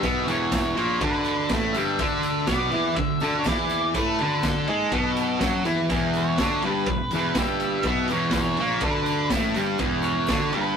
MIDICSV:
0, 0, Header, 1, 5, 480
1, 0, Start_track
1, 0, Tempo, 488202
1, 29, Time_signature, 4, 2, 24, 8
1, 10587, End_track
2, 0, Start_track
2, 0, Title_t, "Lead electric guitar"
2, 0, Program_c, 0, 29
2, 57, Note_on_c, 0, 76, 110
2, 289, Note_off_c, 0, 76, 0
2, 293, Note_on_c, 0, 73, 94
2, 506, Note_off_c, 0, 73, 0
2, 538, Note_on_c, 0, 73, 86
2, 1015, Note_on_c, 0, 71, 76
2, 1021, Note_off_c, 0, 73, 0
2, 1453, Note_off_c, 0, 71, 0
2, 1699, Note_on_c, 0, 76, 97
2, 2428, Note_off_c, 0, 76, 0
2, 2432, Note_on_c, 0, 74, 89
2, 2883, Note_off_c, 0, 74, 0
2, 2903, Note_on_c, 0, 76, 108
2, 3324, Note_off_c, 0, 76, 0
2, 3328, Note_on_c, 0, 73, 69
2, 3399, Note_off_c, 0, 73, 0
2, 3403, Note_on_c, 0, 74, 97
2, 3889, Note_on_c, 0, 71, 92
2, 3898, Note_off_c, 0, 74, 0
2, 4134, Note_off_c, 0, 71, 0
2, 4152, Note_on_c, 0, 71, 81
2, 4381, Note_off_c, 0, 71, 0
2, 4385, Note_on_c, 0, 69, 65
2, 5536, Note_off_c, 0, 69, 0
2, 6067, Note_on_c, 0, 73, 87
2, 6526, Note_off_c, 0, 73, 0
2, 6530, Note_on_c, 0, 71, 95
2, 7256, Note_on_c, 0, 76, 118
2, 7267, Note_off_c, 0, 71, 0
2, 7695, Note_off_c, 0, 76, 0
2, 7734, Note_on_c, 0, 76, 102
2, 7968, Note_on_c, 0, 73, 85
2, 7974, Note_off_c, 0, 76, 0
2, 8172, Note_off_c, 0, 73, 0
2, 8184, Note_on_c, 0, 73, 96
2, 8636, Note_off_c, 0, 73, 0
2, 8685, Note_on_c, 0, 71, 75
2, 9126, Note_off_c, 0, 71, 0
2, 9859, Note_on_c, 0, 73, 87
2, 10309, Note_off_c, 0, 73, 0
2, 10354, Note_on_c, 0, 71, 105
2, 10587, Note_off_c, 0, 71, 0
2, 10587, End_track
3, 0, Start_track
3, 0, Title_t, "Distorted electric guitar"
3, 0, Program_c, 1, 30
3, 24, Note_on_c, 1, 47, 78
3, 40, Note_on_c, 1, 59, 113
3, 258, Note_on_c, 1, 40, 90
3, 260, Note_off_c, 1, 47, 0
3, 268, Note_off_c, 1, 59, 0
3, 272, Note_on_c, 1, 52, 85
3, 739, Note_off_c, 1, 40, 0
3, 743, Note_on_c, 1, 46, 100
3, 746, Note_off_c, 1, 52, 0
3, 757, Note_on_c, 1, 58, 88
3, 981, Note_off_c, 1, 46, 0
3, 988, Note_off_c, 1, 58, 0
3, 990, Note_on_c, 1, 50, 99
3, 1009, Note_on_c, 1, 62, 102
3, 1466, Note_off_c, 1, 50, 0
3, 1476, Note_off_c, 1, 62, 0
3, 1490, Note_on_c, 1, 45, 81
3, 1504, Note_on_c, 1, 57, 96
3, 1717, Note_off_c, 1, 45, 0
3, 1721, Note_on_c, 1, 43, 97
3, 1724, Note_off_c, 1, 57, 0
3, 1734, Note_on_c, 1, 55, 110
3, 1952, Note_off_c, 1, 43, 0
3, 1959, Note_off_c, 1, 55, 0
3, 1959, Note_on_c, 1, 50, 96
3, 1975, Note_on_c, 1, 62, 89
3, 2433, Note_off_c, 1, 50, 0
3, 2438, Note_on_c, 1, 47, 103
3, 2441, Note_off_c, 1, 62, 0
3, 2452, Note_on_c, 1, 59, 101
3, 2659, Note_off_c, 1, 47, 0
3, 2663, Note_on_c, 1, 52, 95
3, 2679, Note_off_c, 1, 59, 0
3, 2683, Note_on_c, 1, 64, 105
3, 2905, Note_off_c, 1, 52, 0
3, 2915, Note_off_c, 1, 64, 0
3, 2928, Note_on_c, 1, 50, 68
3, 3117, Note_off_c, 1, 50, 0
3, 3162, Note_on_c, 1, 50, 86
3, 3176, Note_on_c, 1, 62, 89
3, 3395, Note_off_c, 1, 50, 0
3, 3402, Note_off_c, 1, 62, 0
3, 3412, Note_on_c, 1, 52, 82
3, 3427, Note_on_c, 1, 64, 105
3, 3881, Note_off_c, 1, 52, 0
3, 3888, Note_off_c, 1, 64, 0
3, 3890, Note_on_c, 1, 57, 82
3, 3903, Note_on_c, 1, 69, 102
3, 4120, Note_off_c, 1, 57, 0
3, 4126, Note_off_c, 1, 69, 0
3, 4131, Note_on_c, 1, 50, 83
3, 4142, Note_on_c, 1, 62, 89
3, 4596, Note_on_c, 1, 56, 94
3, 4601, Note_off_c, 1, 50, 0
3, 4606, Note_off_c, 1, 62, 0
3, 4614, Note_on_c, 1, 68, 107
3, 4833, Note_off_c, 1, 56, 0
3, 4834, Note_on_c, 1, 47, 98
3, 4842, Note_off_c, 1, 68, 0
3, 4846, Note_on_c, 1, 59, 91
3, 5310, Note_off_c, 1, 47, 0
3, 5314, Note_on_c, 1, 54, 86
3, 5318, Note_off_c, 1, 59, 0
3, 5326, Note_on_c, 1, 66, 100
3, 5552, Note_off_c, 1, 54, 0
3, 5558, Note_off_c, 1, 66, 0
3, 5558, Note_on_c, 1, 52, 89
3, 5569, Note_on_c, 1, 64, 105
3, 5794, Note_off_c, 1, 52, 0
3, 5800, Note_off_c, 1, 64, 0
3, 5801, Note_on_c, 1, 40, 77
3, 5813, Note_on_c, 1, 52, 90
3, 6275, Note_off_c, 1, 40, 0
3, 6278, Note_on_c, 1, 50, 89
3, 6281, Note_off_c, 1, 52, 0
3, 6292, Note_on_c, 1, 62, 120
3, 6514, Note_off_c, 1, 50, 0
3, 6521, Note_off_c, 1, 62, 0
3, 6524, Note_on_c, 1, 43, 91
3, 6535, Note_on_c, 1, 55, 91
3, 6756, Note_off_c, 1, 43, 0
3, 6762, Note_off_c, 1, 55, 0
3, 6780, Note_on_c, 1, 40, 77
3, 6963, Note_off_c, 1, 40, 0
3, 7012, Note_on_c, 1, 40, 89
3, 7027, Note_on_c, 1, 52, 104
3, 7236, Note_off_c, 1, 40, 0
3, 7240, Note_on_c, 1, 43, 85
3, 7247, Note_off_c, 1, 52, 0
3, 7254, Note_on_c, 1, 55, 112
3, 7713, Note_off_c, 1, 43, 0
3, 7719, Note_off_c, 1, 55, 0
3, 7722, Note_on_c, 1, 47, 80
3, 7735, Note_on_c, 1, 59, 111
3, 7952, Note_on_c, 1, 40, 97
3, 7954, Note_off_c, 1, 47, 0
3, 7960, Note_off_c, 1, 59, 0
3, 7966, Note_on_c, 1, 52, 109
3, 8427, Note_off_c, 1, 40, 0
3, 8434, Note_off_c, 1, 52, 0
3, 8440, Note_on_c, 1, 46, 92
3, 8456, Note_on_c, 1, 58, 118
3, 8670, Note_off_c, 1, 46, 0
3, 8674, Note_on_c, 1, 50, 79
3, 8679, Note_off_c, 1, 58, 0
3, 8692, Note_on_c, 1, 62, 92
3, 9144, Note_off_c, 1, 50, 0
3, 9148, Note_on_c, 1, 45, 104
3, 9156, Note_off_c, 1, 62, 0
3, 9166, Note_on_c, 1, 57, 106
3, 9384, Note_off_c, 1, 45, 0
3, 9390, Note_on_c, 1, 43, 90
3, 9393, Note_off_c, 1, 57, 0
3, 9405, Note_on_c, 1, 55, 109
3, 9624, Note_off_c, 1, 43, 0
3, 9631, Note_on_c, 1, 40, 88
3, 9632, Note_off_c, 1, 55, 0
3, 9642, Note_on_c, 1, 52, 100
3, 10103, Note_off_c, 1, 40, 0
3, 10109, Note_off_c, 1, 52, 0
3, 10109, Note_on_c, 1, 50, 103
3, 10125, Note_on_c, 1, 62, 93
3, 10341, Note_on_c, 1, 43, 81
3, 10342, Note_off_c, 1, 50, 0
3, 10350, Note_off_c, 1, 62, 0
3, 10356, Note_on_c, 1, 55, 114
3, 10577, Note_off_c, 1, 43, 0
3, 10585, Note_off_c, 1, 55, 0
3, 10587, End_track
4, 0, Start_track
4, 0, Title_t, "Picked electric bass"
4, 0, Program_c, 2, 34
4, 29, Note_on_c, 2, 35, 86
4, 253, Note_off_c, 2, 35, 0
4, 269, Note_on_c, 2, 28, 90
4, 718, Note_off_c, 2, 28, 0
4, 749, Note_on_c, 2, 34, 97
4, 975, Note_off_c, 2, 34, 0
4, 994, Note_on_c, 2, 38, 89
4, 1442, Note_off_c, 2, 38, 0
4, 1468, Note_on_c, 2, 33, 91
4, 1695, Note_off_c, 2, 33, 0
4, 1716, Note_on_c, 2, 31, 91
4, 1940, Note_off_c, 2, 31, 0
4, 1961, Note_on_c, 2, 38, 83
4, 2407, Note_off_c, 2, 38, 0
4, 2437, Note_on_c, 2, 35, 93
4, 2662, Note_off_c, 2, 35, 0
4, 2688, Note_on_c, 2, 40, 98
4, 2908, Note_off_c, 2, 40, 0
4, 2919, Note_on_c, 2, 38, 78
4, 3144, Note_off_c, 2, 38, 0
4, 3161, Note_on_c, 2, 38, 89
4, 3385, Note_off_c, 2, 38, 0
4, 3399, Note_on_c, 2, 40, 87
4, 3848, Note_off_c, 2, 40, 0
4, 3878, Note_on_c, 2, 45, 79
4, 4104, Note_off_c, 2, 45, 0
4, 4127, Note_on_c, 2, 38, 87
4, 4572, Note_off_c, 2, 38, 0
4, 4606, Note_on_c, 2, 44, 96
4, 4828, Note_off_c, 2, 44, 0
4, 4839, Note_on_c, 2, 35, 87
4, 5288, Note_off_c, 2, 35, 0
4, 5316, Note_on_c, 2, 42, 84
4, 5543, Note_off_c, 2, 42, 0
4, 5560, Note_on_c, 2, 40, 84
4, 5785, Note_off_c, 2, 40, 0
4, 5792, Note_on_c, 2, 28, 84
4, 6244, Note_off_c, 2, 28, 0
4, 6276, Note_on_c, 2, 38, 88
4, 6502, Note_off_c, 2, 38, 0
4, 6511, Note_on_c, 2, 31, 102
4, 6739, Note_off_c, 2, 31, 0
4, 6755, Note_on_c, 2, 28, 75
4, 6982, Note_off_c, 2, 28, 0
4, 6991, Note_on_c, 2, 28, 89
4, 7219, Note_off_c, 2, 28, 0
4, 7229, Note_on_c, 2, 31, 89
4, 7681, Note_off_c, 2, 31, 0
4, 7708, Note_on_c, 2, 35, 93
4, 7936, Note_off_c, 2, 35, 0
4, 7949, Note_on_c, 2, 28, 85
4, 8399, Note_off_c, 2, 28, 0
4, 8439, Note_on_c, 2, 34, 99
4, 8661, Note_off_c, 2, 34, 0
4, 8667, Note_on_c, 2, 38, 94
4, 9116, Note_off_c, 2, 38, 0
4, 9146, Note_on_c, 2, 33, 87
4, 9373, Note_off_c, 2, 33, 0
4, 9397, Note_on_c, 2, 31, 94
4, 9618, Note_off_c, 2, 31, 0
4, 9624, Note_on_c, 2, 28, 97
4, 10073, Note_off_c, 2, 28, 0
4, 10115, Note_on_c, 2, 38, 97
4, 10333, Note_off_c, 2, 38, 0
4, 10339, Note_on_c, 2, 31, 96
4, 10566, Note_off_c, 2, 31, 0
4, 10587, End_track
5, 0, Start_track
5, 0, Title_t, "Drums"
5, 29, Note_on_c, 9, 36, 104
5, 31, Note_on_c, 9, 54, 65
5, 32, Note_on_c, 9, 51, 88
5, 127, Note_off_c, 9, 36, 0
5, 129, Note_off_c, 9, 54, 0
5, 130, Note_off_c, 9, 51, 0
5, 274, Note_on_c, 9, 51, 75
5, 282, Note_on_c, 9, 54, 72
5, 372, Note_off_c, 9, 51, 0
5, 380, Note_off_c, 9, 54, 0
5, 508, Note_on_c, 9, 38, 106
5, 508, Note_on_c, 9, 51, 111
5, 509, Note_on_c, 9, 36, 103
5, 512, Note_on_c, 9, 54, 93
5, 607, Note_off_c, 9, 38, 0
5, 607, Note_off_c, 9, 51, 0
5, 608, Note_off_c, 9, 36, 0
5, 610, Note_off_c, 9, 54, 0
5, 759, Note_on_c, 9, 51, 71
5, 767, Note_on_c, 9, 54, 24
5, 858, Note_off_c, 9, 51, 0
5, 865, Note_off_c, 9, 54, 0
5, 992, Note_on_c, 9, 36, 108
5, 993, Note_on_c, 9, 51, 107
5, 997, Note_on_c, 9, 54, 26
5, 1091, Note_off_c, 9, 36, 0
5, 1092, Note_off_c, 9, 51, 0
5, 1096, Note_off_c, 9, 54, 0
5, 1225, Note_on_c, 9, 54, 65
5, 1235, Note_on_c, 9, 51, 65
5, 1323, Note_off_c, 9, 54, 0
5, 1333, Note_off_c, 9, 51, 0
5, 1466, Note_on_c, 9, 54, 86
5, 1468, Note_on_c, 9, 38, 116
5, 1468, Note_on_c, 9, 51, 100
5, 1473, Note_on_c, 9, 36, 118
5, 1565, Note_off_c, 9, 54, 0
5, 1567, Note_off_c, 9, 38, 0
5, 1567, Note_off_c, 9, 51, 0
5, 1571, Note_off_c, 9, 36, 0
5, 1713, Note_on_c, 9, 51, 65
5, 1716, Note_on_c, 9, 54, 78
5, 1812, Note_off_c, 9, 51, 0
5, 1815, Note_off_c, 9, 54, 0
5, 1955, Note_on_c, 9, 51, 94
5, 1956, Note_on_c, 9, 36, 106
5, 1956, Note_on_c, 9, 54, 67
5, 2053, Note_off_c, 9, 51, 0
5, 2054, Note_off_c, 9, 36, 0
5, 2054, Note_off_c, 9, 54, 0
5, 2193, Note_on_c, 9, 51, 64
5, 2193, Note_on_c, 9, 54, 78
5, 2291, Note_off_c, 9, 54, 0
5, 2292, Note_off_c, 9, 51, 0
5, 2429, Note_on_c, 9, 38, 101
5, 2429, Note_on_c, 9, 51, 84
5, 2430, Note_on_c, 9, 54, 90
5, 2434, Note_on_c, 9, 36, 108
5, 2528, Note_off_c, 9, 38, 0
5, 2528, Note_off_c, 9, 51, 0
5, 2529, Note_off_c, 9, 54, 0
5, 2532, Note_off_c, 9, 36, 0
5, 2670, Note_on_c, 9, 51, 57
5, 2677, Note_on_c, 9, 54, 31
5, 2768, Note_off_c, 9, 51, 0
5, 2776, Note_off_c, 9, 54, 0
5, 2913, Note_on_c, 9, 51, 92
5, 2916, Note_on_c, 9, 36, 120
5, 2923, Note_on_c, 9, 54, 25
5, 3011, Note_off_c, 9, 51, 0
5, 3015, Note_off_c, 9, 36, 0
5, 3021, Note_off_c, 9, 54, 0
5, 3148, Note_on_c, 9, 54, 73
5, 3156, Note_on_c, 9, 51, 59
5, 3247, Note_off_c, 9, 54, 0
5, 3254, Note_off_c, 9, 51, 0
5, 3384, Note_on_c, 9, 54, 99
5, 3399, Note_on_c, 9, 36, 118
5, 3400, Note_on_c, 9, 38, 112
5, 3400, Note_on_c, 9, 51, 102
5, 3482, Note_off_c, 9, 54, 0
5, 3497, Note_off_c, 9, 36, 0
5, 3498, Note_off_c, 9, 38, 0
5, 3498, Note_off_c, 9, 51, 0
5, 3634, Note_on_c, 9, 54, 81
5, 3644, Note_on_c, 9, 51, 73
5, 3732, Note_off_c, 9, 54, 0
5, 3743, Note_off_c, 9, 51, 0
5, 3877, Note_on_c, 9, 51, 107
5, 3878, Note_on_c, 9, 36, 101
5, 3884, Note_on_c, 9, 54, 74
5, 3976, Note_off_c, 9, 36, 0
5, 3976, Note_off_c, 9, 51, 0
5, 3982, Note_off_c, 9, 54, 0
5, 4115, Note_on_c, 9, 51, 60
5, 4214, Note_off_c, 9, 51, 0
5, 4357, Note_on_c, 9, 38, 112
5, 4357, Note_on_c, 9, 51, 94
5, 4357, Note_on_c, 9, 54, 98
5, 4358, Note_on_c, 9, 36, 117
5, 4455, Note_off_c, 9, 38, 0
5, 4455, Note_off_c, 9, 51, 0
5, 4455, Note_off_c, 9, 54, 0
5, 4456, Note_off_c, 9, 36, 0
5, 4595, Note_on_c, 9, 51, 63
5, 4694, Note_off_c, 9, 51, 0
5, 4833, Note_on_c, 9, 54, 27
5, 4834, Note_on_c, 9, 51, 103
5, 4835, Note_on_c, 9, 36, 106
5, 4931, Note_off_c, 9, 54, 0
5, 4932, Note_off_c, 9, 51, 0
5, 4934, Note_off_c, 9, 36, 0
5, 5077, Note_on_c, 9, 54, 66
5, 5078, Note_on_c, 9, 51, 73
5, 5175, Note_off_c, 9, 54, 0
5, 5177, Note_off_c, 9, 51, 0
5, 5316, Note_on_c, 9, 38, 104
5, 5316, Note_on_c, 9, 51, 102
5, 5318, Note_on_c, 9, 36, 106
5, 5323, Note_on_c, 9, 54, 78
5, 5414, Note_off_c, 9, 38, 0
5, 5414, Note_off_c, 9, 51, 0
5, 5416, Note_off_c, 9, 36, 0
5, 5421, Note_off_c, 9, 54, 0
5, 5555, Note_on_c, 9, 51, 66
5, 5560, Note_on_c, 9, 54, 63
5, 5653, Note_off_c, 9, 51, 0
5, 5659, Note_off_c, 9, 54, 0
5, 5797, Note_on_c, 9, 36, 109
5, 5797, Note_on_c, 9, 51, 101
5, 5804, Note_on_c, 9, 54, 64
5, 5895, Note_off_c, 9, 51, 0
5, 5896, Note_off_c, 9, 36, 0
5, 5902, Note_off_c, 9, 54, 0
5, 6032, Note_on_c, 9, 51, 57
5, 6048, Note_on_c, 9, 54, 64
5, 6130, Note_off_c, 9, 51, 0
5, 6146, Note_off_c, 9, 54, 0
5, 6272, Note_on_c, 9, 38, 122
5, 6272, Note_on_c, 9, 51, 89
5, 6274, Note_on_c, 9, 36, 103
5, 6281, Note_on_c, 9, 54, 83
5, 6370, Note_off_c, 9, 38, 0
5, 6370, Note_off_c, 9, 51, 0
5, 6372, Note_off_c, 9, 36, 0
5, 6379, Note_off_c, 9, 54, 0
5, 6512, Note_on_c, 9, 51, 63
5, 6520, Note_on_c, 9, 54, 27
5, 6610, Note_off_c, 9, 51, 0
5, 6618, Note_off_c, 9, 54, 0
5, 6746, Note_on_c, 9, 51, 95
5, 6752, Note_on_c, 9, 36, 127
5, 6764, Note_on_c, 9, 54, 23
5, 6845, Note_off_c, 9, 51, 0
5, 6850, Note_off_c, 9, 36, 0
5, 6862, Note_off_c, 9, 54, 0
5, 6987, Note_on_c, 9, 51, 58
5, 6994, Note_on_c, 9, 54, 79
5, 7085, Note_off_c, 9, 51, 0
5, 7093, Note_off_c, 9, 54, 0
5, 7224, Note_on_c, 9, 38, 109
5, 7224, Note_on_c, 9, 51, 92
5, 7230, Note_on_c, 9, 36, 109
5, 7230, Note_on_c, 9, 54, 97
5, 7322, Note_off_c, 9, 38, 0
5, 7322, Note_off_c, 9, 51, 0
5, 7328, Note_off_c, 9, 36, 0
5, 7328, Note_off_c, 9, 54, 0
5, 7469, Note_on_c, 9, 51, 68
5, 7478, Note_on_c, 9, 54, 67
5, 7567, Note_off_c, 9, 51, 0
5, 7577, Note_off_c, 9, 54, 0
5, 7697, Note_on_c, 9, 51, 87
5, 7706, Note_on_c, 9, 36, 108
5, 7710, Note_on_c, 9, 54, 70
5, 7795, Note_off_c, 9, 51, 0
5, 7804, Note_off_c, 9, 36, 0
5, 7809, Note_off_c, 9, 54, 0
5, 7940, Note_on_c, 9, 51, 63
5, 7960, Note_on_c, 9, 54, 73
5, 8038, Note_off_c, 9, 51, 0
5, 8058, Note_off_c, 9, 54, 0
5, 8168, Note_on_c, 9, 38, 108
5, 8168, Note_on_c, 9, 51, 108
5, 8184, Note_on_c, 9, 36, 101
5, 8189, Note_on_c, 9, 54, 85
5, 8267, Note_off_c, 9, 38, 0
5, 8267, Note_off_c, 9, 51, 0
5, 8282, Note_off_c, 9, 36, 0
5, 8288, Note_off_c, 9, 54, 0
5, 8424, Note_on_c, 9, 51, 62
5, 8451, Note_on_c, 9, 54, 27
5, 8522, Note_off_c, 9, 51, 0
5, 8549, Note_off_c, 9, 54, 0
5, 8657, Note_on_c, 9, 51, 103
5, 8667, Note_on_c, 9, 36, 120
5, 8678, Note_on_c, 9, 54, 27
5, 8755, Note_off_c, 9, 51, 0
5, 8765, Note_off_c, 9, 36, 0
5, 8776, Note_off_c, 9, 54, 0
5, 8906, Note_on_c, 9, 51, 71
5, 8909, Note_on_c, 9, 54, 72
5, 9004, Note_off_c, 9, 51, 0
5, 9007, Note_off_c, 9, 54, 0
5, 9145, Note_on_c, 9, 38, 123
5, 9145, Note_on_c, 9, 51, 97
5, 9148, Note_on_c, 9, 36, 108
5, 9157, Note_on_c, 9, 54, 97
5, 9244, Note_off_c, 9, 38, 0
5, 9244, Note_off_c, 9, 51, 0
5, 9247, Note_off_c, 9, 36, 0
5, 9255, Note_off_c, 9, 54, 0
5, 9383, Note_on_c, 9, 51, 68
5, 9396, Note_on_c, 9, 54, 76
5, 9481, Note_off_c, 9, 51, 0
5, 9494, Note_off_c, 9, 54, 0
5, 9619, Note_on_c, 9, 54, 65
5, 9625, Note_on_c, 9, 51, 102
5, 9628, Note_on_c, 9, 36, 106
5, 9717, Note_off_c, 9, 54, 0
5, 9723, Note_off_c, 9, 51, 0
5, 9727, Note_off_c, 9, 36, 0
5, 9857, Note_on_c, 9, 54, 69
5, 9868, Note_on_c, 9, 51, 71
5, 9956, Note_off_c, 9, 54, 0
5, 9966, Note_off_c, 9, 51, 0
5, 10095, Note_on_c, 9, 54, 80
5, 10111, Note_on_c, 9, 36, 103
5, 10113, Note_on_c, 9, 38, 121
5, 10113, Note_on_c, 9, 51, 98
5, 10193, Note_off_c, 9, 54, 0
5, 10209, Note_off_c, 9, 36, 0
5, 10211, Note_off_c, 9, 38, 0
5, 10211, Note_off_c, 9, 51, 0
5, 10342, Note_on_c, 9, 54, 27
5, 10350, Note_on_c, 9, 51, 69
5, 10440, Note_off_c, 9, 54, 0
5, 10448, Note_off_c, 9, 51, 0
5, 10587, End_track
0, 0, End_of_file